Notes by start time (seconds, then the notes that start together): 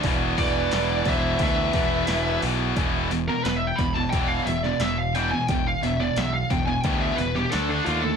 0.04 E1 E2 B2, kick, open hi-hat
0.08 E3
0.38 E1 E2 B2 E3 D5, kick, open hi-hat
0.42 B4
0.72 E1 E2 B2 E3, snare, open hi-hat
1.05 E1 E2 B2 E3 C5 E5, kick, open hi-hat
1.39 D2 E2 B2 E3 E5, kick, open hi-hat
1.45 B4
1.73 E1 E2 B2 E3, kick, open hi-hat
2.07 E1 E2 B2 E3, snare, open hi-hat
2.42 B1 E2 B2 E3, open hi-hat
2.76 E1 E2 B2 E3, kick, open hi-hat
3.11 E2 B2, open hi-hat
3.28 E2 B2 A#4
3.44 E1 E2 B2 B4, snare, open hi-hat
3.56 E5
3.67 G5
3.76 E1 B2 B5, kick, open hi-hat
3.80 E2
3.94 E2 B2 A5
4.10 E1 E2 G5, kick, open hi-hat
4.15 B2 E3
4.28 F5
4.46 E1 E2 B2 E5, open hi-hat
4.63 E2 B2 D5, snare
4.80 E1 E2 B2 E5, snare, open hi-hat
4.98 F5
5.15 E2 B2 E3 G5, open hi-hat
5.31 E2 B2 G#5
5.48 E1 E2 B2 G5, kick, open hi-hat
5.67 F5
5.83 E1 E2 B2 E5, open hi-hat
6.00 E2 B2 D5
6.16 B1 E2 B2 E5, snare, open hi-hat
6.34 F5
6.50 E1 E2 B2 G5, kick, open hi-hat
6.66 E2 B2 G#5
6.82 D2 E2 B2 E3 G5, kick, open hi-hat
7.01 E5
7.16 E1 E2 B2 B4, open hi-hat
7.35 E2 B2 G4, snare
7.50 D2 D3 A3 D4 A4, snare, open hi-hat
7.68 D4
7.84 D#2 D3 A3 D4 F4, open hi-hat
8.01 D3 A3 A4